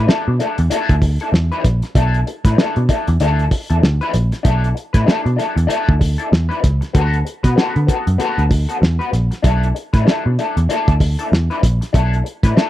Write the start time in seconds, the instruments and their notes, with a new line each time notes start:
0.07 clean electric guitar D4 E4 A4, muted picked electric bass stroke, snare
0.27 picked electric bass B2, muted clean electric guitar stroke
0.39 clean electric guitar D4 E4 A4, snare, closed hi-hat
0.58 picked electric bass E2, muted clean electric guitar stroke, closed hi-hat
0.70 clean electric guitar D4 E4 A4, muted picked electric bass stroke, closed hi-hat
0.89 picked electric bass D2, kick, closed hi-hat
1.02 muted clean electric guitar stroke, kick, open hi-hat
1.20 clean electric guitar D4 E4 A4, closed hi-hat
1.33 picked electric bass E2, muted clean electric guitar stroke, snare
1.52 clean electric guitar D4 E4 B4, closed hi-hat
1.64 picked electric bass A#1, muted clean electric guitar stroke, kick, snare, closed hi-hat
1.82 muted clean electric guitar stroke, snare, closed hi-hat
1.95 picked electric bass B1, clean electric guitar D4 E4 A4, kick, closed hi-hat
2.14 closed hi-hat
2.27 muted clean electric guitar stroke, closed hi-hat
2.45 picked electric bass A2, clean electric guitar D4 E4 B4, kick, snare, closed hi-hat
2.58 clean electric guitar D4 E4 A4, muted picked electric bass stroke, snare
2.76 picked electric bass B2, muted clean electric guitar stroke, closed hi-hat
2.89 clean electric guitar D4 E4 A4, kick, closed hi-hat
3.07 picked electric bass E2, muted clean electric guitar stroke, closed hi-hat
3.20 picked electric bass D2, clean electric guitar D4 E4 A4, closed hi-hat
3.39 closed hi-hat
3.51 muted clean electric guitar stroke, kick, open hi-hat
3.70 picked electric bass E2, clean electric guitar D4 E4 A4, closed hi-hat
3.83 picked electric bass D2, muted clean electric guitar stroke, snare
4.01 clean electric guitar D4 E4 B4, closed hi-hat
4.14 picked electric bass A#1, muted clean electric guitar stroke, snare, closed hi-hat
4.32 muted clean electric guitar stroke, snare, closed hi-hat
4.43 picked electric bass B1, clean electric guitar D4 E4 A4, kick, closed hi-hat
4.64 closed hi-hat
4.74 muted clean electric guitar stroke, closed hi-hat
4.93 picked electric bass A2, clean electric guitar D4 E4 B4, kick, snare, closed hi-hat
5.06 clean electric guitar D4 E4 A4, muted picked electric bass stroke, snare
5.24 picked electric bass B2, muted clean electric guitar stroke, closed hi-hat
5.36 clean electric guitar D4 E4 A4, snare, closed hi-hat
5.56 picked electric bass E2, muted clean electric guitar stroke, closed hi-hat
5.67 clean electric guitar D4 E4 A4, muted picked electric bass stroke, closed hi-hat
5.89 picked electric bass D2, kick
5.99 muted clean electric guitar stroke, kick, open hi-hat
6.18 clean electric guitar D4 E4 A4, closed hi-hat
6.31 picked electric bass E2, muted clean electric guitar stroke, snare
6.49 clean electric guitar D4 E4 B4, closed hi-hat
6.62 picked electric bass C#2, muted clean electric guitar stroke, kick, snare, closed hi-hat
6.81 muted clean electric guitar stroke, snare, closed hi-hat
6.93 picked electric bass D2, clean electric guitar B3 F#4 A4, kick, closed hi-hat
7.13 closed hi-hat
7.25 muted clean electric guitar stroke, closed hi-hat
7.43 picked electric bass B2, clean electric guitar B3 F#4 B4, kick, snare, closed hi-hat
7.56 clean electric guitar B3 F#4 A4, muted picked electric bass stroke, snare
7.74 picked electric bass D3, muted clean electric guitar stroke, closed hi-hat
7.87 clean electric guitar B3 F#4 A4, kick, closed hi-hat
8.06 picked electric bass F#2, muted clean electric guitar stroke, closed hi-hat
8.18 clean electric guitar B3 F#4 A4, muted picked electric bass stroke, closed hi-hat
8.38 picked electric bass D2, closed hi-hat
8.49 muted clean electric guitar stroke, kick, open hi-hat
8.69 clean electric guitar B3 F#4 A4, closed hi-hat
8.81 picked electric bass E2, muted clean electric guitar stroke, snare
8.99 clean electric guitar B3 F#4 B4, closed hi-hat
9.12 picked electric bass A#1, muted clean electric guitar stroke, snare, closed hi-hat
9.31 muted clean electric guitar stroke, snare, closed hi-hat
9.42 picked electric bass B1, clean electric guitar D4 E4 A4, kick, closed hi-hat
9.63 closed hi-hat
9.75 muted clean electric guitar stroke, closed hi-hat
9.93 picked electric bass A2, clean electric guitar D4 E4 B4, kick, snare, closed hi-hat
10.05 clean electric guitar D4 E4 A4, muted picked electric bass stroke, snare
10.26 picked electric bass B2, muted clean electric guitar stroke
10.39 clean electric guitar D4 E4 A4, snare, closed hi-hat
10.57 picked electric bass E2, muted clean electric guitar stroke, closed hi-hat
10.69 clean electric guitar D4 E4 A4, muted picked electric bass stroke, closed hi-hat
10.88 picked electric bass D2, kick, closed hi-hat
11.00 muted clean electric guitar stroke, kick, open hi-hat
11.19 clean electric guitar D4 E4 A4, closed hi-hat
11.32 picked electric bass E2, muted clean electric guitar stroke, snare
11.50 clean electric guitar D4 E4 B4, closed hi-hat
11.62 picked electric bass A#1, muted clean electric guitar stroke, kick, snare, closed hi-hat
11.81 muted clean electric guitar stroke, snare, closed hi-hat
11.93 picked electric bass B1, clean electric guitar D4 E4 A4, kick, closed hi-hat
12.14 closed hi-hat
12.24 muted clean electric guitar stroke, closed hi-hat
12.43 picked electric bass A2, clean electric guitar D4 E4 B4, kick, snare, closed hi-hat
12.56 clean electric guitar D4 E4 A4, muted picked electric bass stroke, snare